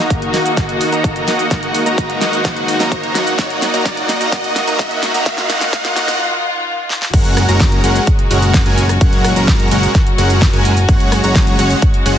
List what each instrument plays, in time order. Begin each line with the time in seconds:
Already playing: string section D#3 A#3 F#4, riser
0.00 analog synth bass F#1, supersaw synth A#3 D#4 F#4 D#5 A#5
0.10 kick, closed hi-hat, cabasa
0.22 closed hi-hat
0.34 analog synth bass F#1, supersaw synth A#3 D#4 F#4 D#5 F#5, snare, open hi-hat, cabasa
0.46 closed hi-hat, cabasa
0.57 analog synth bass F#1, supersaw synth A#3 D#4 F#4 D#5 F#5, kick, snare, closed hi-hat, cabasa
0.69 closed hi-hat
0.81 open hi-hat, cabasa
0.92 analog synth bass F#1, supersaw synth A#3 D#4 F#4 D#5 A#5, closed hi-hat, cabasa
1.04 kick, closed hi-hat, cabasa
1.16 closed hi-hat
1.27 analog synth bass F#1, supersaw synth A#3 D#4 F#4 D#5 F#5, snare, open hi-hat, cabasa
1.39 closed hi-hat, cabasa
1.51 analog synth bass F#1, string section G#3, supersaw synth A#3 D#4 F#4 D#5 F#5, kick, snare, closed hi-hat, cabasa
1.63 closed hi-hat
1.74 open hi-hat, cabasa
1.86 analog synth bass F#1, supersaw synth A#3 D#4 F#4 D#5 A#5, closed hi-hat, cabasa
1.98 kick, closed hi-hat, cabasa
2.10 closed hi-hat
2.21 analog synth bass F#1, supersaw synth A#3 D#4 F#4 D#5 F#5, snare, open hi-hat, cabasa
2.33 closed hi-hat, cabasa
2.45 analog synth bass F#1, supersaw synth A#3 D#4 F#4 D#5 F#5, kick, snare, closed hi-hat, cabasa
2.57 closed hi-hat
2.68 open hi-hat, cabasa
2.80 analog synth bass F#2, supersaw synth A#3 D#4 F#4 D#5 A#5, snare, closed hi-hat, cabasa
2.92 kick, closed hi-hat, cabasa
3.04 closed hi-hat
3.15 supersaw synth A#3 D#4 F#4 D#5 F#5, snare, open hi-hat, cabasa
3.27 closed hi-hat, cabasa
3.38 analog synth bass F#1, supersaw synth A#3 D#4 F#4 D#5 F#5, kick, snare, closed hi-hat, cabasa
3.50 closed hi-hat
3.62 snare, open hi-hat, cabasa
3.74 supersaw synth A#3 D#4 F#4 D#5 A#5, closed hi-hat, cabasa
3.85 supersaw synth A#3 D#4 F#4 D#5 F#5, kick, snare, closed hi-hat, cabasa
3.97 closed hi-hat
4.09 snare, open hi-hat, cabasa
4.21 supersaw synth A#3 D#4 F#4 D#5 A#5, closed hi-hat, cabasa
4.32 analog synth bass F#1, supersaw synth A#3 D#4 F#4 D#5 F#5, kick, snare, closed hi-hat, cabasa
4.44 closed hi-hat
4.56 snare, open hi-hat, cabasa
4.67 supersaw synth A#3 D#4 F#4 D#5 A#5, closed hi-hat, cabasa
4.79 analog synth bass F#1, supersaw synth A#3 D#4 F#4 D#5 F#5, kick, snare, closed hi-hat, cabasa
4.91 closed hi-hat
5.03 snare, open hi-hat, cabasa
5.14 analog synth bass F#1, supersaw synth A#3 D#4 F#4 D#5 A#5, closed hi-hat, cabasa
5.26 supersaw synth A#3 D#4 F#4 D#5 F#5, string section F4, kick, snare, closed hi-hat, cabasa
5.38 snare, closed hi-hat
5.49 analog synth bass F#1, supersaw synth A#3 D#4 F#4 D#5 F#5, snare, open hi-hat, cabasa
5.61 snare, closed hi-hat, cabasa
5.73 supersaw synth A#3 D#4 F#4 D#5 F#5, kick, snare, closed hi-hat, cabasa
5.85 snare, closed hi-hat
5.96 supersaw synth A#3 D#4 F#4 D#5 F#5, snare, open hi-hat, cabasa
6.08 snare, closed hi-hat, cabasa
6.90 snare
7.02 snare
7.13 analog synth bass F#1, string section A#2 G#3 F#4, supersaw synth G#3 C#4 F#4 A#4 F#5, kick, closed hi-hat, crash, cabasa
7.25 closed hi-hat
7.37 cross-stick, open hi-hat, cabasa
7.49 analog synth bass F#1, supersaw synth G#3 C#4 F#4 A#4 A#5, closed hi-hat, cabasa
7.60 kick, snare, closed hi-hat, cabasa
7.72 closed hi-hat
7.84 analog synth bass F#1, supersaw synth G#3 C#4 F#4 A#4 F#5, open hi-hat, cabasa
7.96 closed hi-hat, cabasa
8.07 kick, closed hi-hat, cabasa
8.19 closed hi-hat
8.31 analog synth bass F#1, supersaw synth G#3 C#4 F#4 A#4 F#5, open hi-hat, cabasa
8.42 closed hi-hat, cabasa
8.54 kick, snare, closed hi-hat, cabasa
8.66 analog synth bass F#1, supersaw synth G#3 C#4 F#4 A#4 G#5, closed hi-hat
8.78 open hi-hat, cabasa
8.89 cross-stick, closed hi-hat, cabasa
9.01 analog synth bass F#1, string section F#3, supersaw synth G#3 C#4 F#4 A#4 F#5, kick, closed hi-hat, cabasa
9.13 closed hi-hat
9.24 cross-stick, open hi-hat, cabasa
9.36 analog synth bass F#1, supersaw synth G#3 C#4 F#4 A#4 A#5, closed hi-hat, cabasa
9.48 kick, snare, closed hi-hat, cabasa
9.60 closed hi-hat
9.71 analog synth bass F#1, supersaw synth G#3 C#4 F#4 A#4 F#5, open hi-hat, cabasa
9.83 closed hi-hat, cabasa
9.95 kick, snare, closed hi-hat, cabasa
10.07 closed hi-hat
10.18 analog synth bass F#1, supersaw synth G#3 C#4 F#4 A#4 F#5, open hi-hat, cabasa
10.30 closed hi-hat, cabasa
10.42 kick, snare, closed hi-hat, cabasa
10.53 analog synth bass F#1, supersaw synth G#3 C#4 F#4 A#4 G#5, closed hi-hat
10.65 open hi-hat, cabasa
10.77 closed hi-hat, cabasa
10.89 analog synth bass F#1, string section C#3 G#3, supersaw synth G#3 C#4 F#4 C#5 F#5, kick, closed hi-hat, cabasa
11.00 closed hi-hat
11.12 cross-stick, open hi-hat, cabasa
11.24 analog synth bass F#1, supersaw synth G#3 C#4 F#4 C#5 A#5, closed hi-hat, cabasa
11.35 kick, snare, closed hi-hat, cabasa
11.47 closed hi-hat
11.59 analog synth bass F#1, supersaw synth G#3 C#4 F#4 C#5 F#5, open hi-hat, cabasa
11.71 closed hi-hat, cabasa
11.82 kick, closed hi-hat, cabasa
11.94 closed hi-hat
12.06 analog synth bass F#1, supersaw synth G#3 C#4 F#4 C#5 F#5, open hi-hat, cabasa